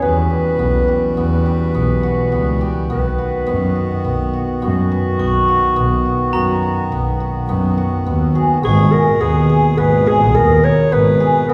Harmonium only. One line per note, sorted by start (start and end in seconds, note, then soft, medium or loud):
0.01 2.86 E3 medium
0.01 2.86 G3 medium
0.01 8.59 F#4 medium
2.89 8.59 D#3 medium
2.89 8.59 B3 medium
8.62 11.46 A#2 medium
8.62 11.46 B2 medium
8.62 11.46 G#4 medium
11.50 11.54 D#3 medium
11.50 11.54 B3 medium
11.50 11.54 A4 medium